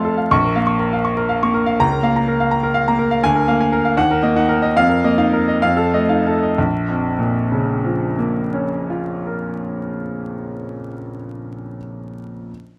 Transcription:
grand piano
Already playing: F2 A3 A4 F5 C6
0.05 A4
0.17 F5
0.31 A#1 C#6
0.44 A#4
0.56 A#3 F5
0.67 C#6
0.79 A#4
0.93 F5
1.05 C#6
1.17 A#4
1.29 F5
1.43 A#3 C#6
1.54 A#4
1.66 F5
1.80 C#2 A#5
1.92 A#4
2.03 A#3 F5
2.16 A#5
2.28 A#4
2.40 F5
2.51 A#5
2.63 A#4
2.74 F5
2.88 A#3 A#5
2.99 A#4
3.11 F5
3.23 D2 G#5
3.35 A#4
3.48 A#3 F5
3.60 G#5
3.72 A#4
3.85 F5
3.97 D#2 F#5
4.11 A#4
4.23 A#3 D#5
4.36 D#4 F#5
4.49 A#4
4.62 D#5
4.76 F2 F5
4.89 A#4
5.04 A#3 D#5
5.18 D#4 F5
5.33 A#4
5.48 D#5
5.62 F2 F5
5.77 A4
5.94 A3 D#5
6.09 D#4 F5
6.27 A4
6.43 D#5
6.58 A#1
6.88 F2
7.19 A#2
7.52 C#3
7.84 F3
8.18 A#3
8.54 C#4
8.90 F4
9.27 A#4

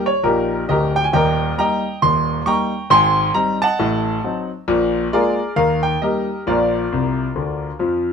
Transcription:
grand piano
0.06 C#5
0.24 A#1 A#2 D#4 G4 A#4
0.68 D1 D2 G4 A#4 D#5
0.96 G5
1.04 G#5
1.13 D#1 D#2 A#4 D#5 G5
1.58 G3 A#3 D#4 D#5 G5 A#5
2.02 D#1 D#2 C6
2.46 G3 A#3 D#4 G5 A#5 C#6
2.90 G#1 G#2 G5 G#5 C6
3.34 G3 C4 D#4 A#5
3.62 D#5 F#5 A5
3.79 A1 A2
4.24 F#3 C4 D#4
4.68 A#1 A#2
5.13 G#3 A#3 F4 G#4 A#4 D5
5.56 D#2 D#3 A#4 F5
5.83 G5
6.02 G3 A#3 D#4 G4 A#4 D#5
6.47 A#1 A#2 F4 A#4 D5
6.92 C2 C3
7.35 D2 D3
7.79 F2 F3

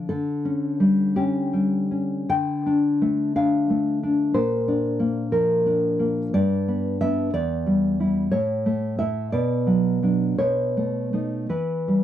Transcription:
nylon-string guitar
0.09 D3 A4
0.45 C#4
0.80 G3
1.16 C#4 G4
1.53 G3
1.91 C#4
2.29 D3 G5
2.66 D4
3.02 A3
3.36 D4 F5
3.70 A3
4.03 D4
4.34 A#2 C5
4.68 D4
5.00 A#3
5.32 F3 A#4
5.66 D4
5.99 A#3
6.34 G2 D5
6.68 B3
7.01 B3 D4 E5
7.34 E2 D5
7.66 G3
8.00 G3 E4
8.31 A2 C#5
8.66 A3
8.99 A3 E4 E5
9.32 B2 D5
9.67 F#3
10.03 F#3 D4
10.38 B2 C#5
10.77 A3
11.13 A3 D#4
11.49 E3 B4
11.88 G3

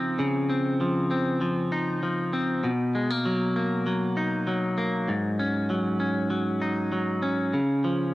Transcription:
clean electric guitar
Already playing: C#3 F3 C4 D#4
0.19 C#3
0.50 C4
0.81 F3
1.11 C4
1.41 F3
1.72 D#4
2.03 F3
2.33 C4
2.64 B2
2.95 G#3
3.10 A#3
3.25 F#3
3.56 A#3
3.86 F#3
4.17 D#4
4.47 F#3
4.78 A#3
5.08 G#2
5.39 C#4
5.70 F#3
6.00 C#4
6.30 F#3
6.62 D#4
6.92 F#3
7.22 C#4
7.53 C#3
7.84 F3

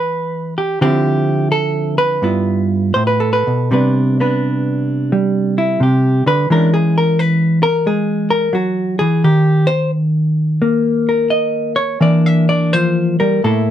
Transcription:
hollow-body jazz guitar
Already playing: E3 G3 D4 E4 B4
0.58 G4
0.81 D3 F3 C4 E4 G4
1.52 A4
1.98 B4
2.22 G2 B3 E4 F4
2.94 A2 C5
3.07 B4
3.20 A4
3.33 B4
3.47 B2
3.71 C3 G3 B3 D4 B4
4.20 B3 D4 B4
5.12 G3
5.58 E4
5.80 C3 G4
6.26 D3 B4
6.50 E3 G#3 C#4 D4 A#4
6.74 G#4
6.98 A#4
7.19 B4
7.63 A#4
7.86 G#3 G#4
8.30 A#4
8.53 F#3 F#4
8.99 E3 G#4
9.24 D#3 G4
9.67 C5
10.62 A#3
11.09 A#4
11.30 D#5
11.76 C#5
12.01 E3 A#3 D4 D5
12.26 E5
12.49 D4 D5
12.73 F3 C5
13.20 G3 A#4
13.44 A2 A3 A#3 E4 A4

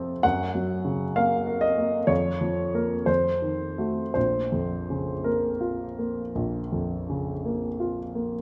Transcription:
grand piano
Already playing: F2 C3 F3 C4 A4
0.23 F#2 F#5
0.55 F#3
0.85 C#3
1.16 A#3 F5
1.47 A#4
1.61 D#5
1.78 A#3
2.07 F2 C#5
2.41 F3
2.74 A#3 A#4
3.06 F2 C5
3.42 D#3
3.78 A3 F#4
4.14 A#1 C5
4.52 F2
4.90 C#3
5.24 A#3 A#4
5.61 F4
5.98 A#3
6.35 A#1
6.72 F2
7.10 C#3
7.45 A#3
7.80 F4
8.15 A#3

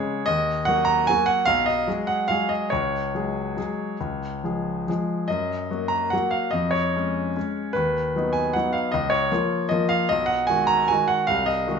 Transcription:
grand piano
Already playing: C#3 G#3 G#4 C#5
0.26 D#2 D#5
0.65 F#3 A#3 F#4 F#5
0.85 A#5
1.07 F#3 A#3 F#4 G#5
1.26 F#5
1.45 B1 F5
1.66 D#5
1.87 F#3 G#3 G#4
2.07 F#5
2.28 F#3 G#3 G#4 F5
2.49 D#5
2.70 C#2 C#5
3.15 F#3 G#3 G#4
3.57 F#3 G#3 G#4
4.01 C#2
4.44 F3 G#3 G#4
4.88 F3 G#3 G#4
5.28 F#2 D#5
5.71 F#3 A#3 F#4
5.88 A#5
6.10 F#3 A#3 F#4 F#5
6.31 F5
6.51 F2 D#5
6.71 C#5
6.95 G#3 C#4
7.36 G#3 C#4
7.73 D#2 B4
8.16 F#3 B3 D#4
8.33 G#5
8.53 F#3 B3 D#4 F#5
8.73 F5
8.92 C#2 D#5
9.10 C#5
9.31 F3 A#3 F4
9.69 F3 A#3 F4 D#5
9.89 F5
10.09 B1 D#5
10.26 F#5
10.47 D#3 G#3 F#4 G#5
10.67 A#5
10.88 D#3 G#3 F#4 G#5
11.08 F#5
11.27 C2 F5
11.46 D#5
11.67 D#3 G#3 F#4

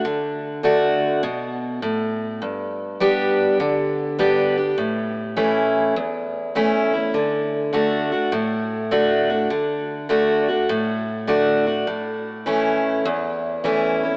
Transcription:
steel-string acoustic guitar
0.05 D3
0.63 D3 A3 D4 F#4
1.23 B2
1.82 A2
2.42 G2
3.00 G3 B3 D4 G4
3.60 D3
4.19 G3 B3 D4 G4
4.57 D4 G4
4.78 A2
5.37 E3 A3 C#4 E4
5.96 E2
6.55 E3 A3 C#4 E4
6.93 C#4 E4
7.14 D3
7.73 D3 A3 D4 F#4
8.12 D4 F#4
8.32 A2
8.91 D3 A3 D4 F#4
9.29 D4 F#4
9.50 D3
10.09 D3 A3 D4 F#4
10.48 D4 F#4
10.69 A2
11.27 D3 A3 D4 F#4
11.66 D4 F#4
11.87 A2
12.46 E3 A3 C#4 E4
13.05 E2
13.64 E3 A3 C#4 E4
14.03 C#4 E4

